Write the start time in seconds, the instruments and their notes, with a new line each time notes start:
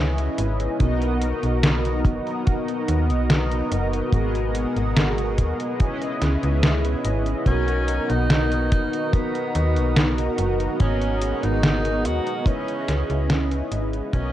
Already playing: fm bass C#2, analog synth pad B2 G#3 B3 C#4 E4, analog polysynth C#4 E4 G#4 B4 D#5
0.18 closed hi-hat
0.38 fm bass G#1, closed hi-hat
0.60 closed hi-hat
0.79 fm bass B1, analog synth pad B2 F#3 B3 F#4 A#4, analog polysynth B3 D#4 F#4 A#4 D#5, kick, closed hi-hat
1.02 closed hi-hat
1.22 closed hi-hat
1.43 fm bass B1, closed hi-hat
1.63 snare, closed hi-hat
1.85 closed hi-hat
2.05 fm bass F#1, kick, closed hi-hat
2.27 closed hi-hat
2.47 kick, closed hi-hat
2.68 closed hi-hat
2.88 fm bass D#2, closed hi-hat
3.10 fm bass B1, closed hi-hat
3.30 snare, closed hi-hat
3.52 closed hi-hat
3.72 fm bass F#1, closed hi-hat
3.93 closed hi-hat
4.12 fm bass G#1, analog synth pad G#3 F#4, analog polysynth B3 F#4 G#4 A#4 D#5, kick, closed hi-hat
4.35 closed hi-hat
4.55 closed hi-hat
4.76 fm bass G#1, closed hi-hat
4.97 snare, closed hi-hat
5.18 closed hi-hat
5.38 fm bass D#2, kick, closed hi-hat
5.60 closed hi-hat
5.79 analog polysynth C#4 E4 G#4 B4 D#5, analog synth pad C#4 E4, kick, closed hi-hat
6.02 closed hi-hat
6.22 fm bass C#2, snare, closed hi-hat
6.43 fm bass C#2, closed hi-hat
6.63 snare, closed hi-hat
6.85 closed hi-hat
7.05 fm bass G#1, closed hi-hat
7.26 closed hi-hat
7.45 fm bass B1, analog synth pad D#3 F#3 F#4 A#4, analog polysynth B3 D#4 F#4 A#4 D#5, tenor saxophone C#4, kick, closed hi-hat
7.68 closed hi-hat
7.88 closed hi-hat
8.10 fm bass B1, tenor saxophone D#4, closed hi-hat
8.30 snare, closed hi-hat
8.52 closed hi-hat
8.72 fm bass F#1, tenor saxophone D#4, kick, closed hi-hat
8.93 closed hi-hat
9.13 tenor saxophone B3, kick, closed hi-hat
9.35 closed hi-hat
9.55 fm bass D#2, closed hi-hat
9.76 fm bass B1, closed hi-hat
9.96 snare, closed hi-hat
10.18 closed hi-hat
10.38 fm bass F#1, closed hi-hat
10.60 closed hi-hat
10.79 fm bass G#1, analog synth pad D#3 G#3 B3, analog polysynth B3 F#4 G#4 A#4 D#5, tenor saxophone C#4, kick, closed hi-hat
11.01 closed hi-hat
11.21 closed hi-hat
11.43 fm bass G#1, tenor saxophone D#4, closed hi-hat
11.63 snare, closed hi-hat
11.85 closed hi-hat
12.05 fm bass D#2, tenor saxophone F#4, closed hi-hat
12.27 closed hi-hat
12.45 analog synth pad G#3 C#4 E4, analog polysynth C#4 E4 G#4 B4 D#5, tenor saxophone C#4, kick, closed hi-hat
12.68 closed hi-hat
12.88 fm bass C#2, snare, closed hi-hat
13.10 fm bass C#2, closed hi-hat
13.30 snare, closed hi-hat
13.51 closed hi-hat
13.72 fm bass G#1, closed hi-hat
13.93 closed hi-hat
14.12 fm bass B1, analog synth pad D#3 F#3 F#4 A#4, analog polysynth B3 D#4 F#4 A#4 D#5, tenor saxophone C#4, kick, closed hi-hat